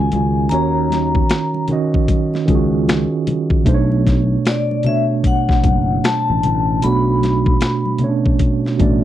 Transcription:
0.00 0.11 C#2 medium
0.00 0.50 D#3 medium
0.00 0.52 C#4 medium
0.00 0.53 F#4 medium
0.00 3.68 A#4 medium
0.00 0.53 G#5 medium
0.12 0.47 C#2 medium
0.12 closed hi-hat medium
0.12 high conga medium
0.12 low conga medium
0.49 1.21 D#2 loud
0.49 1.55 D#3 medium
0.49 1.56 C#4 medium
0.49 1.56 F#4 medium
0.49 1.64 A#5 medium
0.49 closed hi-hat medium
0.55 1.57 C#5 loud
0.90 snare soft
0.90 closed hi-hat medium
0.90 high conga medium
1.15 kick medium
1.29 finger snap medium
1.29 snare loud
1.29 closed hi-hat medium
1.29 muted conga soft
1.54 muted conga soft
1.68 2.39 D#3 medium
1.68 2.39 C#4 medium
1.68 2.40 F#4 medium
1.68 closed hi-hat medium
1.68 low conga medium
1.73 2.41 D#5 medium
1.94 kick medium
2.08 kick medium
2.08 closed hi-hat medium
2.08 muted conga soft
2.08 high conga medium
2.34 snare soft
2.34 muted conga soft
2.46 3.05 C#2 medium
2.46 3.51 D#3 medium
2.46 3.52 C#4 medium
2.46 2.56 F4 medium
2.46 kick medium
2.46 closed hi-hat medium
2.46 high conga medium
2.50 3.53 G#4 loud
2.55 3.56 F#4 medium
2.88 finger snap medium
2.88 snare loud
2.88 closed hi-hat medium
2.88 high conga medium
3.27 closed hi-hat medium
3.27 high conga medium
3.27 low conga medium
3.50 kick loud
3.64 4.36 B1 loud
3.64 4.69 B2 loud
3.64 4.70 A3 loud
3.64 4.71 D4 loud
3.64 kick loud
3.64 closed hi-hat medium
3.68 3.75 C5 medium
3.68 muted conga soft
3.74 4.75 C#5 loud
3.92 muted conga soft
4.06 kick medium
4.06 snare soft
4.06 closed hi-hat medium
4.06 high conga medium
4.46 4.87 D5 medium
4.46 finger snap medium
4.46 snare loud
4.46 closed hi-hat medium
4.71 muted conga soft
4.83 6.22 B2 medium
4.83 6.22 A3 medium
4.83 6.23 D4 medium
4.83 5.04 E5 medium
4.83 closed hi-hat medium
4.83 low conga medium
4.88 6.24 C#5 medium
5.24 6.00 F#5 medium
5.24 kick medium
5.24 closed hi-hat medium
5.24 high conga medium
5.49 kick medium
5.49 snare soft
5.64 5.99 F#1 medium
5.64 kick medium
5.64 closed hi-hat medium
5.64 high conga medium
6.04 6.79 A5 loud
6.04 finger snap medium
6.04 snare loud
6.04 closed hi-hat medium
6.04 muted conga soft
6.04 high conga medium
6.28 6.42 A1 medium
6.28 muted conga soft
6.43 6.79 A1 loud
6.43 closed hi-hat medium
6.43 high conga medium
6.43 low conga medium
6.82 7.53 B1 loud
6.82 7.87 B2 medium
6.82 7.87 A3 medium
6.82 7.88 D4 medium
6.82 7.97 B5 loud
6.82 closed hi-hat medium
6.82 muted conga soft
6.86 7.89 F#4 loud
7.21 snare soft
7.21 closed hi-hat medium
7.21 high conga medium
7.46 kick medium
7.61 finger snap medium
7.61 snare loud
7.61 closed hi-hat medium
7.86 high conga medium
7.98 8.70 B2 medium
7.98 8.71 A3 medium
7.98 closed hi-hat medium
7.98 low conga medium
8.03 8.10 C#4 medium
8.03 8.72 C#5 medium
8.09 8.74 D4 medium
8.26 kick medium
8.39 kick medium
8.39 closed hi-hat medium
8.39 high conga medium
8.65 snare soft
8.65 muted conga soft
8.78 9.04 A1 medium
8.78 9.04 B2 medium
8.78 9.04 A3 medium
8.78 9.04 D4 medium
8.78 kick medium
8.78 closed hi-hat medium
8.78 high conga medium
8.82 9.04 D5 medium

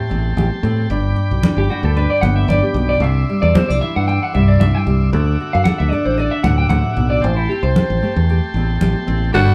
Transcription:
0.00 0.12 A2 medium
0.00 0.88 A3 medium
0.00 0.38 G4 medium
0.00 2.98 G5 medium
0.00 0.89 A5 medium
0.00 0.89 C6 medium
0.09 0.34 A1 medium
0.09 0.89 E2 medium
0.09 0.64 C4 medium
0.09 muted conga soft
0.37 0.49 A1 medium
0.37 0.90 G4 medium
0.37 high conga medium
0.63 0.86 A2 medium
0.63 0.89 C4 medium
0.63 muted conga soft
0.90 1.13 G1 loud
0.90 2.99 G2 medium
0.90 1.44 D4 medium
0.90 3.00 B5 medium
0.90 3.00 D6 medium
0.90 muted conga soft
1.16 muted nylon-string guitar stroke medium
1.31 1.42 B1 medium
1.43 1.71 D4 medium
1.43 high conga medium
1.57 1.68 G1 medium
1.57 1.70 G4 medium
1.70 2.21 D3 medium
1.70 1.96 D4 medium
1.70 1.84 F#4 medium
1.83 2.06 D2 medium
1.83 1.96 A4 medium
1.97 2.50 D4 medium
1.97 2.10 B4 medium
1.97 muted conga soft
2.10 2.21 D5 medium
2.21 2.45 G1 medium
2.21 2.99 D3 medium
2.21 2.75 B3 medium
2.21 2.35 F#5 loud
2.21 muted conga soft
2.21 high conga medium
2.36 2.48 E5 medium
2.48 2.61 G1 loud
2.48 3.03 D4 medium
2.48 2.63 D5 medium
2.48 high conga medium
2.63 2.75 G4 medium
2.74 2.97 B1 loud
2.74 2.99 B3 medium
2.74 muted conga soft
2.89 3.02 D5 medium
3.00 3.23 C2 loud
3.00 3.82 C3 medium
3.00 3.57 D4 medium
3.00 5.10 E5 medium
3.00 3.42 E5 loud
3.00 5.11 C6 medium
3.00 5.11 D6 medium
3.00 muted conga soft
3.29 4.34 G3 medium
3.42 3.53 E2 loud
3.42 3.54 D5 medium
3.55 3.70 B3 medium
3.55 3.68 C5 medium
3.55 high conga medium
3.68 3.80 C2 medium
3.68 4.07 D4 soft
3.68 3.81 D5 medium
3.81 5.12 E3 medium
3.81 5.13 E4 medium
3.81 3.95 E5 medium
3.96 4.18 G2 medium
3.96 4.07 F#5 medium
4.08 4.59 D4 medium
4.08 4.21 G5 loud
4.08 muted conga soft
4.23 4.34 F#5 loud
4.34 4.57 C2 medium
4.34 5.10 G2 medium
4.34 4.86 G3 medium
4.34 4.48 E5 loud
4.34 muted conga soft
4.48 4.60 D5 medium
4.60 4.73 C2 medium
4.60 5.10 D4 medium
4.60 4.75 E5 loud
4.60 high conga medium
4.75 4.82 G5 loud
4.87 5.09 C2 loud
4.87 5.13 G3 medium
4.87 muted conga soft
5.13 5.35 D2 loud
5.13 7.24 D3 medium
5.13 5.68 A4 medium
5.13 7.22 E5 medium
5.13 7.22 F#5 medium
5.13 7.22 D6 medium
5.13 muted conga soft
5.41 6.45 F#4 medium
5.53 5.65 F#2 medium
5.53 5.64 F5 medium
5.64 5.92 A4 medium
5.64 5.78 F#5 loud
5.64 high conga medium
5.78 5.90 D2 medium
5.78 5.91 E5 medium
5.91 7.21 D4 medium
5.91 6.19 A4 medium
5.91 6.05 D5 medium
6.05 6.28 A1 medium
6.05 6.18 C5 medium
6.18 7.22 A4 medium
6.18 6.32 D5 medium
6.18 muted conga soft
6.31 6.43 E5 loud
6.44 6.67 D2 loud
6.44 7.21 A2 medium
6.44 7.22 F#4 medium
6.44 6.58 F#5 loud
6.44 muted conga soft
6.44 high conga medium
6.58 6.69 G5 loud
6.69 6.82 D2 loud
6.69 6.97 C3 medium
6.69 7.08 F#5 medium
6.69 high conga medium
6.96 7.19 B1 loud
6.96 7.23 B2 medium
6.96 muted conga soft
7.10 7.23 D5 medium
7.21 7.46 A1 loud
7.21 7.36 C5 loud
7.21 9.31 G5 medium
7.21 9.32 A5 medium
7.21 9.31 C6 medium
7.21 muted nylon-string guitar stroke medium
7.21 muted conga soft
7.36 7.49 E4 medium
7.49 8.55 C4 medium
7.49 7.63 G4 medium
7.63 7.74 C2 medium
7.63 8.13 C5 medium
7.76 8.02 G4 medium
7.76 high conga medium
7.90 8.01 A1 medium
8.02 9.31 A3 medium
8.02 8.29 G4 medium
8.16 8.39 E2 medium
8.30 8.81 G4 medium
8.30 muted conga soft
8.54 8.77 A1 medium
8.54 9.34 E2 medium
8.54 9.06 C4 medium
8.81 8.94 A1 medium
8.81 9.32 G4 medium
8.81 high conga medium
9.07 9.30 A1 loud
9.07 9.31 C4 medium
9.07 muted conga soft
9.32 9.46 G1 loud
9.32 9.54 G2 medium
9.32 9.54 D4 medium
9.32 9.54 F#4 medium
9.32 9.54 A4 loud
9.32 9.54 G5 medium
9.32 9.54 B5 medium
9.32 9.54 D6 medium
9.32 muted conga soft

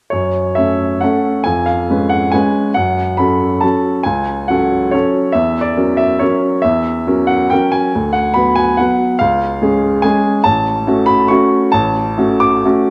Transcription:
0.10 0.56 F#2 soft
0.10 0.56 C#5 medium
0.55 0.98 A3 soft
0.55 0.98 C#4 soft
0.55 0.98 A4 soft
0.55 1.01 E5 soft
1.01 1.42 A3 soft
1.01 1.42 C#4 soft
1.01 1.43 A4 soft
1.01 1.45 F#5 soft
1.44 1.88 F2 soft
1.44 1.66 G#5 medium
1.66 2.10 F5 soft
1.90 2.29 G#3 soft
1.90 2.29 C#4 soft
1.90 2.30 B4 soft
2.09 2.32 F#5 soft
2.32 2.72 G#3 soft
2.32 2.72 C#4 soft
2.32 2.72 B4 soft
2.32 2.75 G#5 medium
2.74 3.18 F#2 soft
2.74 3.18 F#5 medium
3.17 3.59 F#3 soft
3.17 3.59 C#4 soft
3.17 3.59 A4 soft
3.17 3.62 B5 medium
3.61 4.02 F#3 soft
3.61 4.02 C#4 soft
3.61 4.03 A4 soft
3.61 4.05 A5 soft
4.03 4.48 C#2 soft
4.03 4.48 G#5 medium
4.48 4.90 F#3 soft
4.48 4.90 C#4 soft
4.48 4.90 A4 soft
4.48 4.93 F#5 medium
4.91 5.31 F#3 soft
4.91 5.31 C#4 soft
4.91 5.32 A4 soft
4.91 5.34 C#5 medium
5.32 5.75 E2 soft
5.32 5.61 E5 medium
5.61 5.98 D5 soft
5.77 6.17 F#3 soft
5.77 6.17 C#4 soft
5.77 6.17 A#4 soft
5.97 6.20 E5 medium
6.19 6.60 F#3 soft
6.19 6.61 C#4 soft
6.19 6.61 A#4 soft
6.19 6.63 C#5 soft
6.62 7.06 E2 soft
6.62 7.28 E5 medium
7.07 7.48 F#3 soft
7.07 7.48 C#4 soft
7.07 7.48 A#4 soft
7.27 7.50 F#5 medium
7.50 7.90 F#3 soft
7.50 7.91 C#4 soft
7.50 7.91 A#4 soft
7.50 7.73 G5 medium
7.72 8.14 G#5 medium
7.95 8.35 D2 soft
8.13 8.34 F#5 medium
8.34 8.75 F#3 soft
8.34 8.75 B3 soft
8.34 8.75 B4 soft
8.34 8.56 B5 medium
8.56 8.78 G#5 medium
8.77 9.16 F#3 soft
8.77 9.16 B3 soft
8.77 9.17 B4 soft
8.77 9.19 F#5 soft
9.19 9.60 C#2 soft
9.19 10.03 F5 medium
9.62 10.00 G#3 soft
9.62 10.00 C#4 soft
9.62 10.00 G#4 soft
10.02 10.41 G#3 soft
10.02 10.42 C#4 soft
10.02 10.42 G#4 soft
10.02 10.44 G#5 medium
10.44 10.85 A1 soft
10.44 11.07 A5 medium
10.87 11.26 A3 soft
10.87 11.26 C#4 soft
10.87 11.26 F#4 soft
11.06 11.29 B5 medium
11.28 11.69 A3 soft
11.28 11.70 C#4 soft
11.28 11.70 F#4 soft
11.28 11.73 C#6 medium
11.72 12.17 A1 soft
11.72 12.41 A5 medium
12.18 12.61 A3 soft
12.18 12.61 C#4 soft
12.18 12.61 F#4 soft
12.40 12.90 D6 medium
12.65 12.90 A3 soft
12.65 12.90 C#4 soft
12.65 12.90 F#4 soft

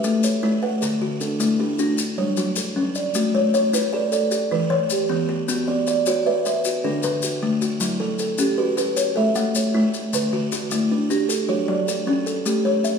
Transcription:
0.00 0.23 A3 medium
0.00 0.43 B4 medium
0.00 0.43 E5 medium
0.00 maracas medium
0.04 0.43 A3 medium
0.04 0.62 A4 medium
0.24 0.82 C#5 medium
0.24 maracas medium
0.43 0.82 A3 medium
0.43 0.82 E4 medium
0.63 1.21 B4 medium
0.63 1.01 F#5 medium
0.82 1.21 D3 medium
0.82 1.20 A4 medium
0.82 maracas medium
1.01 1.40 D3 medium
1.01 1.60 F#4 medium
1.21 1.58 D4 medium
1.21 1.79 A4 medium
1.21 maracas medium
1.40 1.79 A3 medium
1.40 1.98 E4 medium
1.40 maracas medium
1.60 1.98 D4 medium
1.60 2.18 G4 medium
1.79 1.98 D4 medium
1.79 2.37 F#4 medium
1.79 maracas medium
1.98 maracas medium
2.18 2.57 F#3 medium
2.18 2.76 G3 medium
2.18 2.76 C#5 medium
2.37 2.76 F#3 medium
2.37 2.96 F#4 medium
2.37 maracas medium
2.56 3.15 A4 medium
2.56 maracas medium
2.76 3.15 F#3 medium
2.76 3.15 C#4 medium
2.95 3.35 D5 medium
2.95 maracas medium
3.15 3.54 A3 medium
3.15 3.54 F#4 medium
3.15 maracas medium
3.35 3.73 A3 medium
3.35 3.53 C#5 medium
3.54 4.12 C#5 medium
3.54 4.13 C#5 medium
3.54 maracas medium
3.73 4.12 E4 medium
3.73 4.32 B4 medium
3.73 maracas medium
3.93 4.32 A4 medium
3.93 4.51 D5 medium
4.12 4.32 A4 medium
4.12 4.71 D5 medium
4.12 maracas medium
4.31 4.90 G4 medium
4.31 maracas medium
4.51 4.90 E3 medium
4.51 5.09 E4 medium
4.51 5.10 B4 medium
4.70 5.09 E3 medium
4.70 5.28 C#5 medium
4.90 5.49 G4 medium
4.90 maracas medium
5.09 5.49 E3 medium
5.09 5.47 B3 medium
5.29 5.68 G4 medium
5.48 5.87 B3 medium
5.48 5.87 F#4 medium
5.48 maracas medium
5.68 6.07 B3 medium
5.68 5.86 D5 medium
5.87 6.45 D5 medium
5.87 6.46 D5 medium
5.87 maracas medium
6.06 6.46 F#4 medium
6.06 6.65 C#5 medium
6.06 maracas medium
6.26 6.65 B4 medium
6.26 6.84 E5 medium
6.46 6.65 B4 medium
6.46 7.04 E5 medium
6.46 maracas medium
6.65 7.23 F#4 medium
6.65 maracas medium
6.84 7.23 D3 medium
6.84 7.42 D4 medium
6.84 7.42 A4 medium
7.03 7.42 D3 medium
7.03 7.62 B4 medium
7.03 maracas medium
7.22 7.81 F#4 medium
7.22 maracas medium
7.43 7.81 D3 medium
7.43 7.81 A3 medium
7.62 8.00 F#4 medium
7.62 maracas medium
7.80 8.19 F#3 medium
7.80 8.20 E4 medium
7.80 maracas medium
8.00 8.39 F#3 medium
8.00 8.19 A4 medium
8.19 8.78 A4 medium
8.19 maracas medium
8.38 8.77 C#4 medium
8.38 8.97 G4 medium
8.38 maracas medium
8.58 8.97 F#4 medium
8.58 9.16 B4 medium
8.77 8.97 F#4 medium
8.77 9.36 B4 medium
8.77 maracas medium
8.97 9.55 C#5 medium
8.97 maracas medium
9.16 9.56 A3 medium
9.16 9.74 A4 medium
9.16 9.75 E5 medium
9.35 9.74 A3 medium
9.35 9.94 F#5 medium
9.35 maracas medium
9.55 10.14 C#5 medium
9.55 maracas medium
9.74 10.14 A3 medium
9.74 10.13 E4 medium
9.94 maracas medium
10.13 10.52 D3 medium
10.13 10.53 B4 medium
10.13 maracas medium
10.33 10.72 D3 medium
10.33 10.51 F#4 medium
10.52 11.10 F#4 medium
10.52 maracas medium
10.71 11.10 A3 medium
10.71 11.30 E4 medium
10.71 maracas medium
10.91 11.30 D4 medium
11.10 11.30 D4 medium
11.10 11.69 G4 medium
11.10 maracas medium
11.29 11.87 A4 medium
11.29 maracas medium
11.48 11.88 F#3 medium
11.48 12.07 F#4 medium
11.48 12.07 C#5 medium
11.68 12.07 F#3 medium
11.68 12.26 D5 medium
11.88 12.46 A4 medium
11.88 maracas medium
12.07 12.46 F#3 medium
12.07 12.46 C#4 medium
12.26 12.65 A4 medium
12.26 maracas soft
12.46 12.84 A3 medium
12.46 12.85 G4 medium
12.46 maracas medium
12.65 12.99 A3 medium
12.65 12.99 C#5 medium
12.84 12.99 E5 medium
12.84 maracas soft

